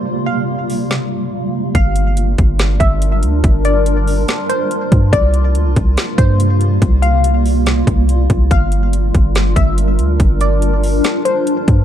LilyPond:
<<
  \new Staff \with { instrumentName = "Synth pluck" } { \time 4/4 \key g \minor \tempo 4 = 142 r8 f''2.~ f''8 | f''4 r4. e''8 r4 | r8 d''2 c''4. | d''4 r4. c''8 r4 |
r8 f''2.~ f''8 | f''4 r4. e''8 r4 | r8 d''2 c''4. | }
  \new Staff \with { instrumentName = "Ambient pad" } { \time 4/4 \key g \minor <c g bes f'>1 | <g d' f' bes'>1~ | <g d' f' bes'>1 | <c bes>1~ |
<c bes>1 | <d' bes'>1~ | <d' bes'>1 | }
  \new Staff \with { instrumentName = "808-style bass" } { \clef bass \time 4/4 \key g \minor r1 | g,,4. g,,4 g,,4 d,8 | g,,2 r4. g,8 | c,4 d,16 c,16 c,8 r8 g,4. |
c,2~ c,8 c,4 c,8 | g,,4. g,,4 g,,4 d,8 | g,,2 r4. g,8 | }
  \new DrumStaff \with { instrumentName = "Drums" } \drummode { \time 4/4 r4 r8 hho8 sn4 r4 | <hh bd>8 hh8 hh8 <hh bd>8 <hh sn>8 <hh bd>8 hh8 hh8 | <hh bd>8 hh8 hh8 hho8 <hh sn>8 hh8 hh8 <hh bd>8 | <hh bd>8 hh8 hh8 <hh bd>8 <hh sn>8 <hh bd>8 hh8 hh8 |
<hh bd>8 hh8 hh8 hho8 <hh sn>8 <hh bd>8 hh8 <hh bd>8 | <hh bd>8 hh8 hh8 <hh bd>8 <hh sn>8 <hh bd>8 hh8 hh8 | <hh bd>8 hh8 hh8 hho8 <hh sn>8 hh8 hh8 <hh bd>8 | }
>>